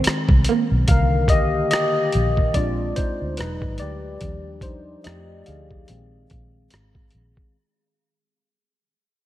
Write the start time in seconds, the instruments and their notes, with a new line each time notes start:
Already playing: tine electric piano D#3 G#3 C4
0.04 muted fingered electric bass stroke, cross-stick, closed hi-hat
0.29 fingered electric bass C2, kick
0.44 closed hi-hat
0.49 clean electric guitar A#3
0.72 fingered electric bass B1
0.88 fingered electric bass C2, tine electric piano D3 D#3 A#3 A#4 F5, kick, closed hi-hat
1.28 tine electric piano G4 D#5, kick, closed hi-hat
1.71 tine electric piano G4 D#5, cross-stick, closed hi-hat
2.12 fingered electric bass A#1, closed hi-hat
2.37 kick
2.54 fingered electric bass A#1, tine electric piano G#3 C4 D4 F4 D5, kick, closed hi-hat
2.96 tine electric piano D#4 C5, kick, closed hi-hat
3.22 fingered electric bass D2
3.37 fingered electric bass E1, tine electric piano F#3 G#3 D#4 B4, cross-stick, closed hi-hat
3.62 fingered electric bass G#1, kick
3.78 fingered electric bass D2, tine electric piano G4 D5, closed hi-hat
4.21 fingered electric bass D#2, tine electric piano F3 G3 D4, kick, closed hi-hat
4.61 tine electric piano D#4 C5, kick, closed hi-hat
5.04 fingered electric bass F2, tine electric piano F3 A3 D#4 G4 D5 D#5, cross-stick, closed hi-hat
5.46 fingered electric bass D2, tine electric piano G#4 F5, closed hi-hat
5.71 kick
5.88 fingered electric bass A#1, tine electric piano D#3 G#3 C4, closed hi-hat
6.30 fingered electric bass A#1, kick, closed hi-hat
6.70 fingered electric bass G#1, cross-stick, closed hi-hat
6.95 kick
7.11 closed hi-hat
7.15 fingered electric bass A#1
7.37 kick